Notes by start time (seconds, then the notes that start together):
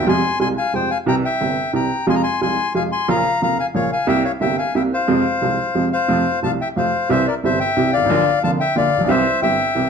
0.03 E2 F2 C3 F3
0.07 G3 G#3 F4 G#5 C6
0.39 C2 C3 G3 G#3 F4 G#5 C6
0.58 F5 G#5
0.73 F2 C3 F3 G3 G#3 F4 C5 G5
0.90 F5 G#5
1.06 C2 C3 E3 G3 E4 G5 A#5
1.25 E5 G5
1.40 G1 G2 C3 E3 G3 E4
1.73 C2 C3 E3 G3 E4 G5 A#5
2.07 F2 C3 F3 G#3 F4 G#5 C6
2.15 A#5
2.23 G#5 C6
2.41 C2 C3 F3 G#3 F4 G#5 C6
2.74 F2 C3 F3 G#3 F4 F5 G#5
2.92 G#5 C6
3.08 A#1 A#2 C#3 F3 A#3 F4 F5 A#5
3.42 F1 F2 C#3 F3 A#3 F4 F5 A#5
3.59 F5 G#5
3.74 A#1 A#2 C#3 F3 A#3 F4 C#5 F5
3.92 F5 G#5
4.07 C2 C3 G3 A#3 E4 E5 G5
4.24 C#5 F5
4.41 G1 G2 C3 G3 A#3 E4 E5 G5
4.58 F5 G#5
4.75 C2 C3 G3 A#3 E4 E5 G5
4.93 C5 F5
5.08 F2 C3 F3 G#3 F4
5.42 C2 C3 F3 G#3 F4
5.75 F2 C3 F3 G#3 F4
5.93 C5 F5
6.08 F2 C3 F3 A3 F4
6.43 C2 C3 F3 A3 F4 F5 A5
6.61 E5 G5
6.76 F2 C3 F3 A3 F4 C5 F5
7.09 C2 C3 E3 G3 E4 C5 E5
7.27 A#4 D5
7.44 G1 G2 C3 E3 G3 E4 C5 E5
7.60 E5 G5
7.76 C2 C3 E3 G3 E4
7.93 D5 F5
7.97 G1
8.01 G#1
8.05 A1
8.10 A#1 A#2 D3 F3 A#3 F4
8.43 F1 F2 D3 F3 A#3 F4 F5 A5
8.60 E5 G5
8.76 A#1 A#2 D3 F3 A#3 F4 D5 F5
8.97 A1 A#1
9.04 B1 E3 C4
9.08 C2 C3 G3 G4 C5 E5
9.42 G1 G2 E3 G3 C4 G4 E5 G5
9.75 C2 C3 E3 G3 C4 G4